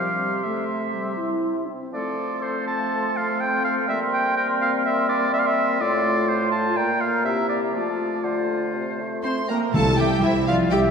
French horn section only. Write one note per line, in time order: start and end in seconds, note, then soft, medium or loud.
0.00 0.44 G3 soft
0.00 0.44 C4 soft
0.44 0.90 A3 soft
0.93 1.18 G3 soft
1.17 1.67 E4 medium
1.66 1.91 C4 soft
1.92 3.84 A3 soft
1.92 5.76 C4 medium
3.88 5.77 A#3 medium
5.80 6.74 A3 medium
5.80 7.08 F4 medium
6.75 7.73 A#3 medium
7.25 7.73 G4 soft
7.75 9.47 A3 soft
7.75 9.50 F4 soft
9.75 10.20 G3 medium
9.75 10.20 E4 medium
10.23 10.70 G3 medium
10.23 10.70 E4 medium
10.71 10.91 G3 medium
10.71 10.91 E4 medium